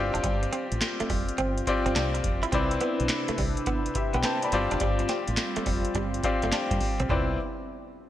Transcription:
Already playing: G1 G3 C4 F4 G4 D5
0.14 F1 D4, closed hi-hat
0.24 G1 G3, kick, closed hi-hat
0.43 muted clean electric guitar stroke, closed hi-hat
0.53 C4, closed hi-hat
0.72 A1, closed hi-hat
0.81 muted clean electric guitar stroke, snare, clap, closed hi-hat
1.00 A3, muted fingered electric bass stroke, closed hi-hat
1.10 F1 G3, kick, open hi-hat
1.29 closed hi-hat
1.38 G1 C4, kick, closed hi-hat
1.58 closed hi-hat
1.67 C4 F4 G4 D5, muted clean electric guitar stroke, kick, closed hi-hat
1.86 G1 C4, closed hi-hat
1.96 C2 D4, snare, clap, closed hi-hat
2.14 muted clean electric guitar stroke, closed hi-hat
2.24 F1, kick, closed hi-hat
2.43 E4, closed hi-hat
2.52 C2 C3 C4 D4 E4 B4 D5, kick, closed hi-hat
2.71 muted clean electric guitar stroke, closed hi-hat
2.81 B3, closed hi-hat
3.00 B1, closed hi-hat
3.09 muted clean electric guitar stroke, snare, clap, closed hi-hat
3.28 A3, muted fingered electric bass stroke, closed hi-hat
3.38 C2 G3, kick, open hi-hat
3.57 closed hi-hat
3.66 B3, kick, closed hi-hat
3.86 closed hi-hat
3.95 G4 E5, muted fingered electric bass stroke, muted clean electric guitar stroke, kick, closed hi-hat
4.14 B1 B3 B4 G5, closed hi-hat
4.23 C4 C5 A5, snare, clap, closed hi-hat
4.42 D5 B5, muted clean electric guitar stroke, closed hi-hat
4.51 G1 G3 C4 F4 G4 D5, closed hi-hat
4.71 F1 D4, closed hi-hat
4.80 G1 G3, kick, closed hi-hat
4.99 muted clean electric guitar stroke, closed hi-hat
5.09 C4, snare, closed hi-hat
5.28 A1, closed hi-hat
5.37 muted clean electric guitar stroke, snare, clap, closed hi-hat
5.56 A3, muted fingered electric bass stroke, closed hi-hat
5.66 F1 G3, kick, open hi-hat
5.85 closed hi-hat
5.95 G1 G3, kick, closed hi-hat
6.14 closed hi-hat
6.23 C4 F4 G4 D5 F5, muted clean electric guitar stroke, kick, closed hi-hat
6.42 G1 A3, closed hi-hat
6.52 D4 G5, snare, clap, closed hi-hat
6.71 G2, muted clean electric guitar stroke, kick, closed hi-hat
6.81 kick, open hi-hat
7.00 B1 C4, closed hi-hat
7.09 C2 C4 E4 B4 D5, kick, floor tom

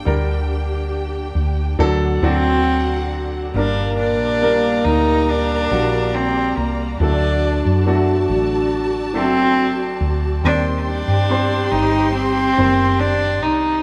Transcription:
Already playing: A#3 D4 G5
0.05 D2 D3 G3 D4 G4 A#4
1.35 D2
1.79 D2 D3 F#3 D4 F#4 A4 F#5
2.22 D2 F#3 C4 D4 F#4
3.53 G1 G2 A#2 G3 A#3 D4 A#4 D5 A#5
3.98 D4
4.20 A#1
4.42 G3 A#3 A#4 D5
4.84 D2 D#4
5.29 D4
5.71 A#1 G3 A#3 D4 F#4
6.14 C4
6.57 C2 A#3
7.00 D2 D3 F#3 A3 D4 F#4 A4 A5
7.65 F#2
7.87 F#3 A3 D4 F#4
8.29 A1
9.14 F#1 F#3 A3 C4 D4 A4
10.01 D2
10.42 D#2 D#3 G3 C4 D4 G4 C5 G5 C6
10.87 D4
11.08 G2
11.29 G3 C4 G4 C5
11.71 G1 D#4
12.14 C4
12.57 F#1 D#3 G3 C4 C5
13.00 D4
13.42 C2 D#4

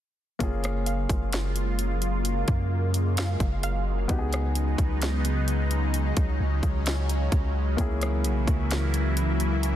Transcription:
0.39 F#1 C#3 F#3 G#3 A#3 C#4 F4, kick, closed hi-hat
0.43 G#4
0.64 cross-stick, closed hi-hat
0.86 F5, closed hi-hat
1.09 F#1, kick, closed hi-hat
1.33 snare, closed hi-hat
1.56 closed hi-hat
1.79 closed hi-hat
2.02 closed hi-hat
2.25 closed hi-hat
2.48 F#2, kick, closed hi-hat
2.94 closed hi-hat
3.17 F5, snare, closed hi-hat
3.40 F#1, kick, closed hi-hat
3.63 F5, closed hi-hat
4.08 C#2 B3 D#4 F#4, kick, closed hi-hat
4.12 G4
4.19 G#4
4.33 cross-stick, closed hi-hat
4.55 closed hi-hat
4.78 C#2, kick, closed hi-hat
5.02 snare, closed hi-hat
5.25 closed hi-hat
5.48 closed hi-hat
5.71 closed hi-hat
5.94 C#4, closed hi-hat
6.17 C#2, kick, closed hi-hat
6.40 C#2
6.63 C#2, kick, closed hi-hat
6.86 snare, closed hi-hat
7.09 closed hi-hat
7.32 C#2, kick, closed hi-hat
7.77 E3 A#3 C#4 E4 G#4, kick, closed hi-hat
8.02 cross-stick, closed hi-hat
8.24 B1, closed hi-hat
8.48 C#2, kick, closed hi-hat
8.71 snare, closed hi-hat
8.94 closed hi-hat
9.17 closed hi-hat
9.40 closed hi-hat
9.63 closed hi-hat

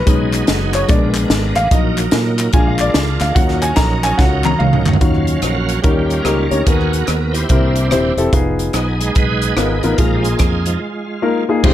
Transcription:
Already playing: B4
0.06 B1 F#3 G#3 B3 C#4 D#4 G#4, kick, closed hi-hat
0.33 clap, closed hi-hat
0.47 F#1, snare, closed hi-hat
0.74 C#5, clap, closed hi-hat
0.88 A#1 G#3 B3 D4 A#4 D5, kick, closed hi-hat
1.15 clap, closed hi-hat
1.30 G#1, snare, closed hi-hat
1.56 A1 F5, clap, closed hi-hat
1.71 A#1 F#3 A#3 D#4 A#4 D#5, kick, closed hi-hat
1.97 clap, closed hi-hat
2.11 A#2, snare, closed hi-hat
2.38 clap, closed hi-hat
2.53 A#1 G#3 C#4 D4 F4 A#4 G#5, kick, closed hi-hat
2.59 D4
2.67 F5
2.79 D5, clap, closed hi-hat
2.94 C#2, snare, closed hi-hat
3.21 D2 F5, snare, clap, closed hi-hat
3.35 D#2 F#3 C#4 D#4 F4 A#4 F#5, kick, closed hi-hat
3.48 snare
3.62 G#5, clap, closed hi-hat
3.76 A#1 A#5, kick, snare, closed hi-hat
4.03 G#5, clap, closed hi-hat
4.18 C#2 F#3 C#4 F4 F#5, kick, snare
4.44 A#5, clap, high tom
4.59 C#2 F5, mid tom
4.73 mid tom
4.86 D2, clap, floor tom
4.93 floor tom
5.01 D#2 D#3 F#3 C#4 D#4 F4 F#4 F5, kick, closed hi-hat
5.14 cross-stick
5.27 closed hi-hat
5.41 A#1 A#3 C#4 F#4, cross-stick, closed hi-hat
5.69 closed hi-hat
5.82 D#2 D#3 G3 A#3 C#4 D#4 F4 F#4 G4 A#4, kick, closed hi-hat
5.89 G4
6.10 closed hi-hat
6.20 G#4 A#4
6.25 C#2 C#4 D#4 G4 A#4, cross-stick, closed hi-hat
6.49 D2 C#4 D#4 G4 A#4 C#5, cross-stick, closed hi-hat
6.64 D#2 D#3 B3 F#4 G#4 A#4, kick, closed hi-hat
6.80 cross-stick
6.90 F#4, closed hi-hat
7.05 D#2 G#4, cross-stick, closed hi-hat
7.32 E4 G4 C5, closed hi-hat
7.48 C2 C3 A#3 C4 D4 E4 G4 A#4, kick, closed hi-hat
7.76 closed hi-hat
7.91 D#1 C4 E4 G4 C5, cross-stick, closed hi-hat
8.17 E1 C4 E4 G4 A4, closed hi-hat
8.32 F1 B3 D#4 F4 G#4, kick, closed hi-hat
8.59 closed hi-hat
8.73 B1 B3 D#4 G#4, cross-stick, closed hi-hat
9.00 G#3 B3 D#4, closed hi-hat
9.15 B1 D#4 G#4 B4, kick, closed hi-hat
9.42 closed hi-hat
9.57 G#1 B3 D#4 F4 A#4, cross-stick, closed hi-hat
9.81 A1 B3 D#4 F4 A#4 B4, closed hi-hat
9.97 A#1 A#2 F3 G#3 A#3 D#4 F4 G#4 A#4, kick, closed hi-hat
10.14 G4
10.23 D#4 F4 G#4, closed hi-hat
10.39 F2, kick, cross-stick, closed hi-hat
10.65 F3 G#3 D#4 F4, closed hi-hat
11.22 A#3 D#4 F4 A#4
11.49 A#3 D#4 F4 G#4
11.63 F1 F3 G#3 C4 D#4 F4 G4 G5, kick, crash

